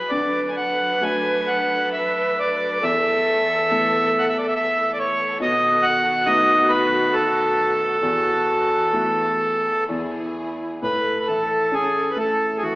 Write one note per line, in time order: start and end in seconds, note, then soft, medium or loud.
0.00 0.13 F#3 soft
0.00 0.12 G#3 soft
0.00 0.12 E4 soft
0.00 0.11 B4 medium
0.09 2.78 D2 medium
0.09 2.79 F#3 medium
0.09 2.80 D4 medium
0.09 2.80 A4 medium
0.09 2.78 B4 medium
0.09 0.50 D5 medium
0.48 0.56 G#5 medium
0.57 1.03 F#5 medium
1.01 2.78 F#3 soft
1.01 2.78 A3 soft
1.01 2.78 D4 soft
1.01 1.49 G#5 medium
1.47 1.89 F#5 medium
1.93 2.39 E5 medium
2.39 2.84 D5 medium
2.81 5.36 E2 medium
2.81 5.37 E3 medium
2.81 10.79 B3 medium
2.81 5.10 A4 loud
2.81 9.85 A4 medium
2.81 4.25 E5 loud
3.71 5.37 E3 soft
3.71 5.36 A3 soft
3.71 5.37 B3 soft
4.19 4.28 F#5 medium
4.29 4.38 E5 medium
4.38 4.46 D5 medium
4.48 4.54 E5 medium
4.56 4.92 E5 loud
4.93 4.98 D5 medium
4.99 5.38 C#5 medium
5.36 7.98 B2 medium
5.36 7.97 D#3 medium
5.36 7.97 F#4 loud
5.42 5.85 D#5 loud
5.83 6.28 F#5 loud
6.26 7.98 A3 medium
6.26 7.98 B3 soft
6.26 7.98 D#4 medium
6.26 6.71 D#5 loud
6.69 7.15 B4 medium
7.13 9.84 A4 medium
8.01 9.84 E2 medium
8.01 10.80 E3 medium
8.01 9.55 F#4 medium
8.93 9.86 A3 soft
8.93 9.86 B3 soft
8.93 9.86 E4 medium
9.89 10.80 E2 medium
9.89 10.79 E4 medium
9.89 10.82 G#4 medium
10.82 12.75 A2 medium
10.82 12.75 A4 medium
10.82 11.18 B4 medium
11.20 11.28 B4 medium
11.27 12.61 E3 soft
11.27 11.74 A4 medium
11.72 12.75 C#4 soft
11.72 12.12 G#4 medium
12.10 12.18 B4 medium
12.16 12.75 A3 soft
12.16 12.57 A4 medium
12.58 12.64 G#4 medium
12.62 12.75 E3 medium
12.62 12.75 F#4 medium